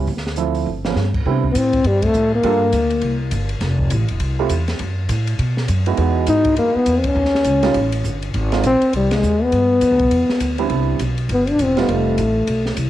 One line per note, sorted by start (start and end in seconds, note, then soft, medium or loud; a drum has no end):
0.07 0.64 D2 medium
0.07 kick soft
0.07 open hi-hat soft
0.17 snare soft
0.27 snare soft
0.36 0.67 F3 medium
0.36 0.67 A3 soft
0.36 0.67 C4 soft
0.36 0.67 E4 medium
0.36 closed hi-hat soft
0.55 open hi-hat soft
0.66 0.94 G1 medium
0.85 0.95 F3 soft
0.85 0.95 A#3 soft
0.85 0.96 B3 medium
0.85 0.96 C#4 medium
0.85 snare soft
0.96 1.23 G2 medium
0.96 snare soft
1.14 kick medium
1.14 crash medium
1.25 1.54 C3 medium
1.25 1.42 G3 medium
1.25 1.42 B3 soft
1.25 1.42 C4 medium
1.25 1.43 D4 soft
1.25 1.43 E4 medium
1.25 kick soft
1.44 kick soft
1.52 1.84 A2 medium
1.52 1.59 B3 medium
1.52 hi-hat pedal medium
1.52 ride medium
1.57 1.89 C4 medium
1.73 kick soft
1.73 ride soft
1.84 2.13 G2 medium
1.84 2.07 G3 medium
1.84 ride medium
2.02 2.33 A3 loud
2.02 kick medium
2.02 ride medium
2.14 2.43 A2 medium
2.14 hi-hat pedal medium
2.35 3.18 A#3 medium
2.43 2.72 G2 medium
2.43 2.60 G3 medium
2.43 2.60 A#3 medium
2.43 2.60 D4 medium
2.43 2.60 F4 medium
2.43 2.60 A4 medium
2.43 kick soft
2.43 ride medium
2.72 3.01 D2 medium
2.72 kick soft
2.72 hi-hat pedal medium
2.72 ride medium
2.90 ride soft
3.01 3.31 C2 medium
3.01 kick soft
3.01 ride medium
3.31 3.60 G1 medium
3.31 kick soft
3.31 hi-hat pedal medium
3.31 ride medium
3.49 ride soft
3.61 3.90 F1 medium
3.61 kick soft
3.61 snare soft
3.61 ride medium
3.79 kick medium
3.90 4.02 A1 medium
3.90 kick soft
3.90 hi-hat pedal medium
3.90 ride medium
4.01 4.10 F1 medium
4.08 4.19 E1 medium
4.08 ride soft
4.20 4.49 C2 medium
4.20 kick soft
4.20 ride medium
4.39 4.49 A3 medium
4.39 4.49 C4 medium
4.39 4.49 E4 medium
4.39 4.50 F4 medium
4.39 4.50 G4 medium
4.49 4.79 E2 medium
4.49 kick soft
4.49 hi-hat pedal medium
4.49 ride medium
4.68 snare soft
4.68 ride soft
4.79 5.08 F#2 medium
4.79 kick soft
4.79 ride soft
5.09 5.38 A2 medium
5.09 kick soft
5.09 hi-hat pedal medium
5.09 ride medium
5.27 ride soft
5.39 5.68 B2 medium
5.39 kick soft
5.39 ride medium
5.57 snare soft
5.68 5.97 F#2 medium
5.68 kick soft
5.68 hi-hat pedal medium
5.68 ride medium
5.86 5.97 G#3 medium
5.86 5.97 B3 medium
5.86 5.97 D#4 medium
5.86 5.97 E4 medium
5.86 5.97 F#4 medium
5.86 ride soft
5.97 6.27 E2 medium
5.97 6.80 G#3 medium
5.97 6.80 B3 medium
5.97 6.80 D#4 medium
5.97 6.80 E4 medium
5.97 6.80 F#4 medium
5.97 kick soft
5.97 ride soft
6.27 6.56 G#2 medium
6.27 6.56 D#4 medium
6.27 kick soft
6.27 hi-hat pedal medium
6.27 ride medium
6.45 kick medium
6.45 ride soft
6.56 6.74 F#2 medium
6.56 6.77 A#3 medium
6.56 ride medium
6.75 7.00 B3 medium
6.75 muted upright bass stroke soft
6.86 7.15 E2 medium
6.86 kick soft
6.86 hi-hat pedal soft
6.86 ride medium
6.98 7.08 C4 medium
7.04 7.94 C#4 medium
7.04 kick medium
7.04 ride medium
7.15 7.44 D#2 medium
7.25 snare soft
7.35 snare soft
7.44 7.74 C#2 medium
7.44 kick soft
7.44 hi-hat pedal medium
7.44 ride medium
7.63 7.74 G3 medium
7.63 7.74 A#3 medium
7.63 7.74 C#4 medium
7.63 7.74 D#4 medium
7.63 7.74 F4 medium
7.63 snare soft
7.63 ride soft
7.74 8.04 A1 medium
7.74 kick soft
7.74 ride medium
7.92 ride medium
8.04 8.33 G1 medium
8.04 kick soft
8.04 hi-hat pedal medium
8.22 ride soft
8.34 8.63 G#1 medium
8.34 kick soft
8.34 ride medium
8.52 8.63 G#3 medium
8.52 8.63 A#3 soft
8.52 8.63 C4 soft
8.52 8.63 D#4 soft
8.52 8.63 F4 medium
8.52 snare soft
8.52 ride soft
8.64 8.81 A#1 medium
8.64 8.93 C4 loud
8.64 kick soft
8.64 hi-hat pedal medium
8.64 ride medium
8.81 muted upright bass stroke soft
8.81 ride soft
8.93 9.22 C2 medium
8.93 9.15 G3 medium
8.93 kick soft
8.93 ride medium
9.11 9.45 G#3 loud
9.11 snare medium
9.11 ride medium
9.23 9.52 D#2 medium
9.23 hi-hat pedal medium
9.43 10.60 B3 medium
9.52 9.81 G2 medium
9.52 kick soft
9.52 ride medium
9.81 9.91 F2 medium
9.81 kick soft
9.81 hi-hat pedal medium
9.81 ride medium
9.91 10.01 D2 soft
9.99 10.11 B1 medium
9.99 kick medium
9.99 ride soft
10.11 10.28 E2 medium
10.11 ride medium
10.29 muted upright bass stroke soft
10.29 snare soft
10.40 10.69 D2 medium
10.40 kick soft
10.40 hi-hat pedal medium
10.40 ride medium
10.58 10.98 G3 medium
10.58 10.98 B3 medium
10.58 10.98 C4 medium
10.58 10.98 D4 medium
10.58 10.98 E4 medium
10.58 ride soft
10.70 10.99 C2 medium
10.70 kick soft
10.70 ride soft
10.99 11.29 B1 medium
10.99 kick soft
10.99 hi-hat pedal soft
10.99 ride medium
11.18 ride soft
11.29 11.58 G1 medium
11.29 kick soft
11.29 ride medium
11.33 11.51 B3 medium
11.47 11.65 D4 medium
11.47 ride soft
11.59 11.88 E1 medium
11.59 kick soft
11.59 hi-hat pedal medium
11.59 ride medium
11.63 11.79 C4 medium
11.77 12.16 G3 medium
11.77 12.16 A3 medium
11.77 11.95 B3 medium
11.77 12.16 C4 medium
11.77 12.16 D#4 medium
11.77 12.16 F4 medium
11.77 snare soft
11.77 ride soft
11.88 12.17 F1 medium
11.88 kick soft
11.88 ride soft
11.93 12.80 A3 medium
12.18 12.47 A1 medium
12.18 kick soft
12.18 hi-hat pedal soft
12.18 ride medium
12.47 12.77 B1 medium
12.47 kick soft
12.47 ride medium
12.66 snare soft
12.77 12.90 C2 medium
12.77 kick soft
12.77 hi-hat pedal medium
12.77 ride medium